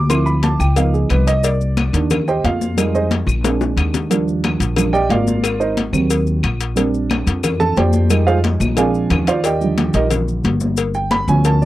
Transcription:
Already playing: upright bass D2
0.09 upright piano F3 C4 E4 C6, cowbell, high conga, claves, maracas
0.26 upright piano B5, high conga, maracas
0.43 upright piano A5, cowbell, high conga, maracas
0.59 upright bass C#2, upright piano G5, claves, maracas
0.76 upright piano F3 B3 D#4 F5, cowbell, high conga, maracas
0.93 upright piano G#4, high conga, maracas
1.10 upright bass C2, upright piano B4, cowbell, high conga, claves, maracas
1.27 upright piano D#5, cowbell, maracas
1.43 upright piano D5, cowbell, high conga, maracas
1.60 high conga, maracas
1.77 cowbell, high conga, claves, maracas
1.93 upright bass D#2, upright piano D#3 A#3 D4, cowbell, high conga, maracas
2.10 cowbell, high conga, low conga, claves, maracas
2.28 upright piano G4 C5 D#5 G5, high conga, maracas
2.44 upright bass F2, upright piano F4 F5, cowbell, high conga, maracas
2.61 high conga, maracas
2.77 upright piano G3 G#3 D#4, cowbell, high conga, claves, maracas
2.95 upright piano D#4 G#4 C5 D#5, high conga, maracas
3.11 cowbell, high conga, maracas
3.27 upright bass A#1, claves, maracas
3.44 upright piano G#3 C4 D4, cowbell, high bongo, high conga, maracas
3.61 high bongo, high conga, maracas
3.77 upright bass D#2, cowbell, high conga, claves, maracas
3.94 cowbell, low bongo, maracas
4.10 upright piano F3 G3 D4, cowbell, high conga, maracas
4.27 high conga, maracas
4.44 cowbell, high conga, claves, maracas
4.60 upright bass A#1, cowbell, high conga, maracas
4.76 upright piano F3 G3 D4, cowbell, high conga, low conga, claves, maracas
4.93 upright piano G4 D5 D#5 G5, high conga, maracas
5.09 upright bass G#1, upright piano F4 A#4 D5 F5, cowbell, high conga, maracas
5.27 high conga, maracas
5.44 cowbell, high conga, claves, maracas
5.60 upright piano D#4 A#4 C5 D#5, high conga, maracas
5.77 cowbell, high conga, maracas
5.92 upright bass D#2, upright piano F#3 A#3 C4, claves, maracas
6.10 cowbell, high conga, maracas
6.27 high conga, maracas
6.43 upright bass A#1, cowbell, high conga, claves, maracas
6.61 cowbell, maracas
6.76 upright piano G3 C4 D4, cowbell, high conga, maracas
6.94 high conga, maracas
7.10 cowbell, high conga, claves, maracas
7.27 upright bass F2, cowbell, high conga, maracas
7.43 cowbell, high conga, low conga, claves, maracas
7.60 upright piano A4 A5, high conga, low conga, maracas
7.76 upright bass F2, upright piano G4 C5 D5 G5, cowbell, high conga, maracas
7.93 high conga, maracas
8.10 upright piano G3 G#3 D#4, cowbell, high conga, claves, maracas
8.27 upright piano F4 G#4 C5 F5, high conga, maracas
8.44 cowbell, high conga, maracas
8.60 upright bass A#1, high conga, claves, maracas
8.76 upright piano F3 G#3 C4 D4 G#4 D5 F5 G#5, cowbell, maracas
8.94 maracas
9.10 upright bass D#2, cowbell, low conga, claves, maracas
9.27 upright piano F4 C5 D5 F5, cowbell, low conga, maracas
9.44 upright piano G4 D5 D#5 G5, cowbell, high conga, maracas
9.61 upright piano D3 F3 G3, high conga, maracas
9.78 cowbell, high conga, maracas
9.94 upright bass A#1, upright piano D#4 G4 A#4 D#5, cowbell, high conga, maracas
10.11 cowbell, high conga, low conga, maracas
10.28 high conga, maracas
10.44 upright bass G1, cowbell, high conga, maracas
10.60 high conga, maracas
10.77 cowbell, high conga, maracas
10.94 upright piano G5, high conga, maracas
11.11 upright piano B5, cowbell, high conga, maracas
11.28 upright bass D2, upright piano F3 B3 C#4 G#5, maracas
11.44 upright piano A5, cowbell, high conga, maracas
11.61 upright piano D5, high conga

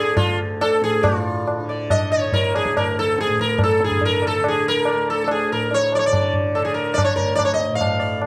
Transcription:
Already playing: tanpura D2 A2 D3, sitar G#4
0.17 sitar F4, tabla na, tabla ge
0.24 tanpura D2
0.61 sitar A4, tabla na
0.81 tanpura A2, sitar G#4, tabla te
1.02 tanpura A2, sitar F4 D5, tabla na, tabla ge
1.47 tabla na
1.60 tanpura D3
1.69 sitar D5
1.90 sitar D#5, tabla na, tabla ge
2.12 sitar C#5
2.17 tanpura D3
2.32 sitar A#4, tabla tin, tabla ge
2.55 sitar G#4, tabla na
2.66 tabla ke
2.72 tanpura D2
2.77 sitar A#4, tabla na, tabla ge
2.99 sitar A4
3.18 sitar G#4, tabla te
3.28 tanpura A2, tabla te
3.39 sitar A#4, tabla ke
3.49 tabla te
3.59 tabla na, tabla ge
3.63 sitar A4
3.80 tabla te
3.84 tanpura D3, sitar G#4
3.91 tabla ge
4.01 tabla tin, tabla ge
4.05 sitar A#4
4.22 tabla na
4.27 sitar A4
4.39 tanpura D3
4.44 tabla na
4.48 sitar G#4
4.68 sitar A#4
4.85 sitar D5, tabla na
4.95 tanpura D2
5.10 sitar A4
5.24 sitar A4, tabla na
5.31 sitar G#4
5.51 tanpura A2, sitar A#4
5.71 sitar C#5, tabla tin
5.92 sitar D5, tabla na
5.99 sitar C#5
6.06 tanpura D3, sitar D5
6.13 tabla na, tabla ge
6.34 tabla ge
6.55 sitar A4, tabla na
6.60 tanpura D3
6.65 sitar G#4
6.74 sitar A#4
6.94 sitar D5
6.98 tabla na, tabla ge
7.04 sitar C#5
7.15 tanpura D2, sitar A#4, tabla ge
7.35 sitar D5, tabla na, tabla ge
7.45 sitar C#5
7.54 sitar D#5
7.60 tabla te
7.68 tanpura A2
7.75 sitar F5
7.81 tabla na, tabla ge
7.99 sitar D5
8.22 tabla na

